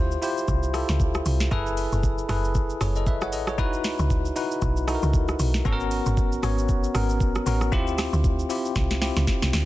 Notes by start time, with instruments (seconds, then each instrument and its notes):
Already playing: log drum bass D2, tine electric piano E4 F4 G4 C5
0.11 shaker
0.22 tine electric piano E4 F4 G4 C5, open hi-hat, shaker
0.38 shaker
0.48 log drum bass C2, kick, shaker
0.63 shaker
0.74 tine electric piano E4 F4 G4 A4, cross-stick, open hi-hat, shaker
0.89 log drum bass C#2, snare, shaker
1.00 kick, shaker
1.14 cross-stick, shaker
1.26 log drum bass C2, open hi-hat, shaker
1.40 snare, shaker
1.51 log drum bass F#1, tine electric piano E4 G#4 A4 B4, kick, shaker
1.66 shaker
1.77 open hi-hat, shaker
1.92 log drum bass F#1, shaker
2.03 kick, shaker
2.18 shaker
2.29 log drum bass F#1, tine electric piano E4 G#4 A4 B4, cross-stick, open hi-hat, shaker
2.44 shaker
2.55 kick, shaker
2.70 shaker
2.81 log drum bass F#1, tine electric piano G#4 C#5, cross-stick, open hi-hat, shaker
2.96 tine electric piano A4 D#5, shaker
3.07 tine electric piano B4 E5, kick, shaker
3.21 tine electric piano C#5 F#5, cross-stick, shaker
3.33 log drum bass A1, tine electric piano A4 D#5, open hi-hat, shaker
3.47 tine electric piano G#4 C#5, cross-stick, shaker
3.58 log drum bass C#2, tine electric piano D#4 E4 F#4 B4, kick, shaker
3.73 shaker
3.84 snare, open hi-hat, shaker
3.99 log drum bass C#2, shaker
4.10 kick, shaker
4.25 shaker
4.36 tine electric piano D#4 E4 F#4 B4, open hi-hat, shaker
4.51 shaker
4.62 log drum bass B1, kick, shaker
4.77 shaker
4.87 tine electric piano D#4 E4 F#4 A4, cross-stick, open hi-hat, shaker
4.95 tine electric piano A#4
5.02 log drum bass C#2, shaker
5.14 kick, shaker
5.28 cross-stick, shaker
5.39 log drum bass B1, open hi-hat, shaker
5.54 snare, shaker
5.65 log drum bass G#1, tine electric piano B3 C#4 F#4 A4, kick, shaker
5.73 tine electric piano A#4
5.80 shaker
5.91 open hi-hat, shaker
6.06 log drum bass G#1, shaker
6.17 kick, shaker
6.32 shaker
6.43 log drum bass G#1, tine electric piano B3 C#4 F#4 C#5, cross-stick, open hi-hat, shaker
6.58 shaker
6.69 kick, shaker
6.84 shaker
6.94 log drum bass G#1, tine electric piano B3 C#4 F#4 A#4, cross-stick, open hi-hat, shaker
7.09 shaker
7.20 kick, shaker
7.35 cross-stick, shaker
7.46 log drum bass A1, tine electric piano B3 C#4 F#4 A#4, open hi-hat, shaker
7.61 cross-stick, shaker
7.72 log drum bass D2, tine electric piano C4 E4 F4 G4, kick, shaker
7.87 shaker
7.98 cross-stick, snare, open hi-hat, shaker
8.13 log drum bass D2, shaker
8.24 kick, shaker
8.39 shaker
8.49 tine electric piano C4 E4 F4 G4, open hi-hat, shaker
8.65 shaker
8.76 log drum bass C2, kick, snare, shaker
8.91 snare, shaker
9.01 tine electric piano C4 E4 F4 G4, snare, open hi-hat, shaker
9.16 log drum bass C#2, snare, shaker
9.27 kick, snare, shaker
9.42 log drum bass C2, snare, shaker
9.53 log drum bass D2, snare, open hi-hat, shaker